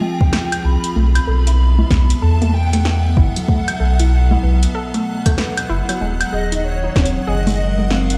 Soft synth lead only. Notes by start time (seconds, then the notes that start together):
0.01 G5
0.64 B5
2.22 A5
2.54 G5
3.17 F#5
6.33 D#5
6.64 C#5
7.27 D#5
7.90 F5